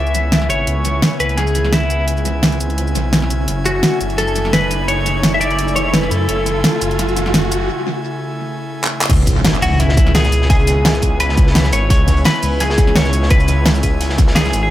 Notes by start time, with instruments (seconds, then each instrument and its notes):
Already playing: detuned saw bass C#2, analog synth pad C#3 B3 E4 G#5, clean electric guitar E5, riser
0.07 shaker
0.15 closed hi-hat, shaker
0.32 snare, closed hi-hat
0.42 snare
0.50 detuned saw bass G#1, clean electric guitar C#5, closed hi-hat, shaker
0.67 detuned saw bass C#2, closed hi-hat
0.85 closed hi-hat, shaker
1.02 snare, closed hi-hat
1.20 detuned saw bass C#2, clean electric guitar B4, closed hi-hat, shaker
1.29 closed hi-hat
1.37 clean electric guitar G#4, snare, closed hi-hat
1.47 shaker
1.55 closed hi-hat, shaker
1.65 snare
1.73 clean electric guitar E4, snare, closed hi-hat
1.90 closed hi-hat, shaker
2.08 closed hi-hat
2.17 shaker
2.25 closed hi-hat, shaker
2.43 snare, closed hi-hat
2.52 closed hi-hat
2.60 detuned saw bass C#2, closed hi-hat, shaker
2.70 closed hi-hat
2.78 closed hi-hat
2.87 shaker
2.95 detuned saw bass B1, closed hi-hat, shaker
3.13 snare, closed hi-hat
3.22 snare
3.30 closed hi-hat, shaker
3.48 detuned saw bass F#1, analog synth pad A3, closed hi-hat
3.66 clean electric guitar F#4, closed hi-hat, shaker
3.83 snare, closed hi-hat
4.01 detuned saw bass F#1, closed hi-hat, shaker
4.10 closed hi-hat
4.18 clean electric guitar A4, snare, closed hi-hat
4.27 shaker
4.36 closed hi-hat, shaker
4.45 snare
4.53 clean electric guitar B4, snare, closed hi-hat
4.71 closed hi-hat, shaker
4.88 clean electric guitar C#5, closed hi-hat
5.06 closed hi-hat, shaker
5.23 snare, closed hi-hat
5.34 clean electric guitar E5
5.41 detuned saw bass F#1, clean electric guitar D5, closed hi-hat, shaker
5.51 closed hi-hat
5.59 closed hi-hat
5.68 shaker
5.76 clean electric guitar C#5, closed hi-hat, shaker
5.93 clean electric guitar B4, snare, closed hi-hat
6.03 snare
6.11 detuned saw bass F#2, clean electric guitar A4, closed hi-hat, shaker
6.29 detuned saw bass F#1, closed hi-hat
6.46 closed hi-hat, shaker
6.64 snare, closed hi-hat
6.81 detuned saw bass F#1, closed hi-hat, shaker
6.91 closed hi-hat
6.99 snare, closed hi-hat
7.08 shaker
7.17 closed hi-hat, shaker
7.26 snare
7.34 snare, closed hi-hat
7.52 closed hi-hat, shaker
8.84 clap
9.01 clap
9.10 detuned saw bass C#2, analog synth pad B3 C#4 E4 G#5, kick, closed hi-hat, crash, impact
9.26 kick, closed hi-hat, shaker
9.37 closed hi-hat
9.45 snare, closed hi-hat
9.54 shaker
9.62 detuned saw bass C#2, clean electric guitar F#4, closed hi-hat, open hi-hat, shaker
9.80 clean electric guitar E4, snare, closed hi-hat
9.89 snare
9.97 kick, closed hi-hat, shaker
10.07 snare
10.15 clean electric guitar G#4, snare, closed hi-hat
10.24 snare, shaker
10.32 closed hi-hat, shaker
10.42 snare
10.50 clean electric guitar G#4, kick, closed hi-hat
10.59 closed hi-hat
10.67 closed hi-hat, shaker
10.85 snare, closed hi-hat
10.95 shaker
11.02 detuned saw bass C#2, kick, closed hi-hat, shaker
11.20 clean electric guitar B4, closed hi-hat
11.29 snare
11.37 kick, closed hi-hat, shaker
11.47 snare
11.55 snare, closed hi-hat
11.65 snare, shaker
11.73 detuned saw bass G#1, clean electric guitar C#5, closed hi-hat, shaker
11.90 detuned saw bass C#2, clean electric guitar C#5, kick, closed hi-hat
12.08 kick, closed hi-hat, shaker
12.17 closed hi-hat
12.24 clean electric guitar B4, snare, closed hi-hat
12.35 shaker
12.43 detuned saw bass C#2, closed hi-hat, open hi-hat, shaker
12.60 clean electric guitar G#4, snare, closed hi-hat
12.70 snare
12.78 kick, closed hi-hat, shaker
12.87 snare
12.95 clean electric guitar C#5, snare, closed hi-hat
13.05 snare, shaker
13.13 closed hi-hat, shaker
13.23 snare
13.30 clean electric guitar B4, kick, closed hi-hat
13.40 closed hi-hat, shaker
13.48 closed hi-hat, shaker
13.66 snare, closed hi-hat
13.75 shaker
13.83 detuned saw bass C#2, kick, closed hi-hat, shaker
14.01 closed hi-hat
14.09 snare
14.18 kick, closed hi-hat, shaker
14.27 snare
14.35 clean electric guitar G#4, snare, closed hi-hat
14.45 snare, shaker
14.53 detuned saw bass G#1, closed hi-hat, shaker
14.63 clean electric guitar G#4